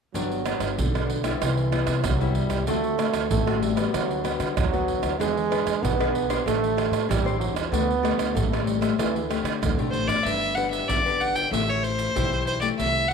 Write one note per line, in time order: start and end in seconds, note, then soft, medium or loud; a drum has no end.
0.14 0.55 G1 medium
0.14 0.75 G2 soft
0.14 0.79 F#3 medium
0.14 0.41 F#3 soft
0.14 0.41 B3 soft
0.14 0.42 D4 medium
0.14 pandeiro medium
0.14 shaker medium
0.14 surdo medium
0.32 pandeiro soft
0.32 shaker soft
0.45 0.75 F#3 medium
0.45 0.75 B3 medium
0.45 0.76 D4 medium
0.45 pandeiro medium
0.45 tamborim medium
0.45 shaker medium
0.60 0.74 G1 medium
0.60 pandeiro medium
0.60 tamborim medium
0.60 shaker medium
0.77 1.32 B1 medium
0.77 1.38 D3 medium
0.77 1.40 D3 medium
0.77 pandeiro medium
0.77 shaker medium
0.77 surdo loud
0.94 1.20 F#3 medium
0.94 1.21 B3 medium
0.94 1.21 D4 medium
0.94 pandeiro soft
0.94 tamborim medium
0.94 shaker soft
1.10 pandeiro medium
1.24 1.67 G3 medium
1.24 1.67 B3 medium
1.24 1.67 E4 medium
1.24 pandeiro medium
1.24 tamborim medium
1.24 shaker medium
1.41 1.81 C2 medium
1.41 2.01 C3 medium
1.41 2.05 E3 medium
1.41 pandeiro medium
1.41 tamborim medium
1.41 shaker medium
1.41 surdo medium
1.57 pandeiro soft
1.57 shaker soft
1.72 2.14 G3 medium
1.72 2.15 B3 medium
1.72 2.15 E4 medium
1.72 pandeiro medium
1.72 tamborim medium
1.87 2.01 C3 medium
1.87 pandeiro medium
1.87 tamborim medium
1.87 shaker medium
2.04 2.44 C2 loud
2.04 2.64 G2 medium
2.04 2.36 F#3 medium
2.04 pandeiro medium
2.04 tamborim medium
2.04 shaker medium
2.04 surdo loud
2.21 2.62 G3 medium
2.21 2.63 B3 medium
2.21 2.63 E4 medium
2.21 pandeiro soft
2.21 shaker soft
2.35 2.67 G3 medium
2.35 pandeiro medium
2.50 2.64 C2 medium
2.50 pandeiro medium
2.50 tamborim medium
2.50 shaker medium
2.67 3.08 D2 medium
2.67 3.27 D3 medium
2.67 2.94 A3 medium
2.67 3.27 A3 loud
2.67 2.94 C4 medium
2.67 2.94 F#4 medium
2.67 pandeiro medium
2.67 shaker medium
2.67 surdo medium
2.84 pandeiro soft
2.84 shaker soft
2.98 3.28 A3 medium
2.98 3.28 C4 medium
2.98 3.28 F#4 medium
2.98 pandeiro medium
2.98 tamborim medium
2.98 shaker medium
3.14 3.27 D2 medium
3.14 pandeiro medium
3.14 tamborim medium
3.14 shaker medium
3.30 3.85 A1 loud
3.30 3.90 A2 medium
3.30 3.63 A3 loud
3.30 pandeiro medium
3.30 shaker medium
3.30 surdo loud
3.46 3.73 A3 medium
3.46 3.73 C4 medium
3.46 3.73 F#4 medium
3.46 pandeiro soft
3.46 tamborim medium
3.46 shaker soft
3.62 3.95 G3 medium
3.62 pandeiro medium
3.76 4.19 G3 medium
3.76 4.19 B3 medium
3.76 4.19 F#4 medium
3.76 pandeiro medium
3.76 tamborim medium
3.76 shaker medium
3.93 4.34 D2 medium
3.93 4.53 D3 medium
3.93 4.30 F#3 loud
3.93 pandeiro medium
3.93 tamborim medium
3.93 shaker medium
3.93 surdo medium
4.11 pandeiro soft
4.11 shaker soft
4.24 4.54 G3 medium
4.24 4.54 B3 medium
4.24 4.54 F#4 medium
4.24 pandeiro medium
4.24 tamborim medium
4.24 shaker medium
4.40 4.54 D3 medium
4.40 pandeiro medium
4.40 tamborim medium
4.40 shaker medium
4.56 4.97 D2 loud
4.56 5.17 D3 medium
4.56 5.16 F#3 loud
4.56 pandeiro medium
4.56 tamborim medium
4.56 shaker medium
4.56 surdo loud
4.73 5.15 B3 medium
4.73 5.15 F#4 medium
4.73 pandeiro soft
4.73 shaker soft
4.88 pandeiro medium
5.03 5.17 D2 medium
5.03 pandeiro medium
5.03 tamborim medium
5.03 shaker medium
5.19 5.60 E2 loud
5.19 5.80 E3 medium
5.19 5.84 G#3 loud
5.19 5.46 D4 medium
5.19 5.46 G#4 medium
5.19 5.47 B4 medium
5.19 pandeiro medium
5.19 shaker medium
5.19 surdo medium
5.37 pandeiro soft
5.37 shaker soft
5.50 5.93 D4 medium
5.50 5.93 G#4 medium
5.50 5.94 B4 medium
5.50 pandeiro medium
5.50 tamborim medium
5.66 5.80 E2 medium
5.66 pandeiro medium
5.66 tamborim medium
5.66 shaker medium
5.83 6.36 B1 medium
5.83 6.43 B2 medium
5.83 6.46 B3 loud
5.83 pandeiro medium
5.83 shaker medium
5.83 surdo loud
5.99 6.26 D4 medium
5.99 6.26 G#4 medium
5.99 6.26 B4 medium
5.99 pandeiro soft
5.99 tamborim medium
5.99 shaker soft
6.15 pandeiro medium
6.29 6.72 D4 medium
6.29 6.72 G4 medium
6.29 6.72 C5 medium
6.29 pandeiro medium
6.29 tamborim medium
6.29 shaker medium
6.46 6.86 A1 medium
6.46 7.05 A3 loud
6.46 7.06 A3 medium
6.46 pandeiro medium
6.46 tamborim medium
6.46 shaker medium
6.46 surdo medium
6.64 pandeiro soft
6.64 shaker soft
6.76 7.19 D4 medium
6.76 7.20 G4 medium
6.76 7.20 C5 medium
6.76 pandeiro medium
6.76 tamborim medium
6.91 7.06 A2 medium
6.91 pandeiro medium
6.91 tamborim medium
6.91 shaker medium
7.09 7.49 A1 loud
7.09 7.69 E3 medium
7.09 7.39 G3 loud
7.09 pandeiro medium
7.09 tamborim medium
7.09 shaker medium
7.09 surdo loud
7.25 7.67 D4 medium
7.25 7.68 G4 medium
7.25 7.68 C5 medium
7.25 pandeiro soft
7.25 shaker soft
7.40 7.54 F#3 medium
7.40 pandeiro medium
7.54 7.69 E2 medium
7.54 pandeiro medium
7.54 tamborim medium
7.54 shaker medium
7.72 8.12 D2 loud
7.72 8.32 D3 medium
7.72 7.91 A3 medium
7.72 8.38 B3 loud
7.72 7.91 C4 medium
7.72 7.91 G4 medium
7.72 pandeiro medium
7.72 shaker medium
7.72 surdo medium
7.91 pandeiro soft
7.91 shaker soft
8.03 8.46 A3 medium
8.03 8.46 G4 medium
8.03 pandeiro medium
8.03 tamborim medium
8.17 8.32 D2 medium
8.17 pandeiro medium
8.17 tamborim medium
8.17 shaker medium
8.35 8.89 A1 loud
8.35 8.96 A2 medium
8.35 8.66 A3 medium
8.35 pandeiro medium
8.35 shaker medium
8.35 surdo loud
8.52 8.78 A3 medium
8.52 8.79 C4 medium
8.52 8.79 G4 medium
8.52 pandeiro soft
8.52 tamborim medium
8.52 shaker soft
8.66 8.96 G3 medium
8.66 pandeiro medium
8.66 shaker medium
8.81 8.93 A3 medium
8.81 8.93 C4 medium
8.81 8.93 G4 medium
8.81 pandeiro medium
8.81 tamborim medium
8.81 shaker medium
8.98 9.39 D2 medium
8.98 9.59 D3 medium
8.98 9.33 E3 medium
8.98 9.17 A3 medium
8.98 9.18 C4 medium
8.98 9.18 G4 medium
8.98 pandeiro medium
8.98 tamborim medium
8.98 shaker medium
8.98 surdo medium
9.16 pandeiro soft
9.16 shaker soft
9.30 9.60 A3 medium
9.30 9.60 C4 medium
9.30 9.60 G4 medium
9.30 pandeiro medium
9.30 tamborim medium
9.30 shaker medium
9.44 9.58 D3 medium
9.44 pandeiro medium
9.44 tamborim medium
9.44 shaker medium
9.62 9.75 D2 loud
9.62 10.22 A2 medium
9.62 10.22 D3 medium
9.62 pandeiro medium
9.62 tamborim medium
9.62 shaker medium
9.62 surdo loud
9.78 9.92 B1 medium
9.78 10.21 A3 medium
9.78 10.21 C4 medium
9.78 10.21 G4 medium
9.78 pandeiro soft
9.78 shaker soft
9.91 10.07 A1 medium
9.91 10.09 C5 medium
9.91 pandeiro medium
10.08 10.23 G1 medium
10.08 10.25 D5 medium
10.08 pandeiro medium
10.08 tamborim medium
10.08 shaker medium
10.24 10.79 G1 medium
10.24 10.85 G3 soft
10.24 10.52 D4 soft
10.24 10.52 G4 soft
10.24 10.52 B4 medium
10.24 10.57 E5 medium
10.24 pandeiro medium
10.24 shaker medium
10.24 surdo medium
10.42 pandeiro soft
10.42 shaker soft
10.55 10.99 D4 medium
10.55 10.99 G4 soft
10.55 11.00 B4 medium
10.55 10.70 F#5 medium
10.55 pandeiro medium
10.71 10.90 E5 medium
10.71 pandeiro medium
10.71 shaker medium
10.88 11.43 G1 medium
10.88 11.49 D3 soft
10.88 11.22 D5 medium
10.88 pandeiro medium
10.88 shaker medium
10.88 surdo loud
11.05 11.47 D4 medium
11.05 11.47 G4 medium
11.05 11.47 B4 medium
11.05 pandeiro soft
11.05 shaker soft
11.21 11.37 F#5 medium
11.21 pandeiro medium
11.35 11.52 G5 medium
11.35 pandeiro medium
11.35 shaker medium
11.51 12.05 A1 medium
11.51 12.12 A3 medium
11.51 12.10 E4 medium
11.51 12.10 G4 medium
11.51 12.10 C5 medium
11.51 11.71 E5 medium
11.51 pandeiro medium
11.51 shaker medium
11.51 surdo medium
11.70 11.85 C#5 medium
11.70 pandeiro soft
11.70 shaker soft
11.84 12.46 C5 medium
11.84 pandeiro medium
11.99 pandeiro medium
11.99 shaker medium
12.16 12.69 B1 medium
12.16 12.76 E3 medium
12.16 12.58 E4 medium
12.16 12.58 G4 medium
12.16 12.58 C5 soft
12.16 pandeiro medium
12.16 shaker medium
12.16 surdo loud
12.33 pandeiro soft
12.33 shaker soft
12.47 12.60 C5 medium
12.47 pandeiro medium
12.47 shaker medium
12.61 13.04 A3 medium
12.61 13.05 E4 medium
12.61 13.05 G4 medium
12.61 12.68 D5 medium
12.61 pandeiro medium
12.61 shaker medium
12.78 13.13 C2 medium
12.78 13.13 C3 soft
12.78 13.10 E5 medium
12.78 pandeiro medium
12.78 shaker medium
12.78 surdo soft
12.96 pandeiro soft
12.96 shaker soft
13.09 13.13 F#5 medium